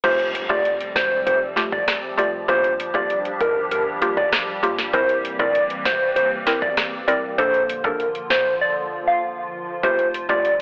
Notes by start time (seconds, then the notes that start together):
0.04 F1 F3 G3 A3 C4 F4 G4 C5, kick, closed hi-hat, crash, impact
0.19 closed hi-hat
0.35 closed hi-hat
0.49 G1 A3 F4 G4 D5, kick
0.65 closed hi-hat
0.81 closed hi-hat
0.96 E1 C5, kick, snare, closed hi-hat
1.26 F1 C5, closed hi-hat
1.56 A3 F4 G4, snare, closed hi-hat
1.72 A1 D5, kick
1.88 cross-stick, snare, closed hi-hat
2.18 F1 A3 F4 G4 D5, closed hi-hat
2.48 G1 G3 A#3 D4 F4 G4 C5, kick, closed hi-hat
2.64 closed hi-hat
2.80 closed hi-hat
2.94 F1 A#3 F4 G4 D5, kick
3.10 closed hi-hat
3.25 closed hi-hat
3.41 G1 A#4, kick, closed hi-hat
3.71 G1 A#4, closed hi-hat
4.02 A#3 F4 G4, closed hi-hat
4.17 A1 D5, kick
4.32 cross-stick, snare, closed hi-hat
4.63 G1 A#3 F4 G4, closed hi-hat
4.79 snare
4.93 C2 E3 C4 E4 A#4 C5, kick, closed hi-hat
5.09 closed hi-hat
5.25 closed hi-hat
5.39 D2 C4 E4 A#4 D5, kick
5.55 closed hi-hat
5.70 closed hi-hat
5.85 C2 C5, kick, snare, closed hi-hat
6.16 C2 C5, closed hi-hat
6.47 C4 E4 A#4, snare, closed hi-hat
6.62 E2 D5, kick
6.77 cross-stick, snare, closed hi-hat
7.08 C2 C4 E4 A#4 D5, closed hi-hat
7.38 A#1 D3 F3 A#3 D4 F4 A4 C5, kick, closed hi-hat
7.54 closed hi-hat
7.69 closed hi-hat
7.84 A1 A#3 D4 A4 A#4, kick
8.00 closed hi-hat
8.15 closed hi-hat
8.30 A#1 C5, kick, snare, closed hi-hat
8.61 D5
9.08 F5
9.83 F1 C3 G3 A3 F4 G4 C5, kick, closed hi-hat
9.99 closed hi-hat
10.14 closed hi-hat
10.29 G1 A3 F4 G4 D5, kick
10.45 closed hi-hat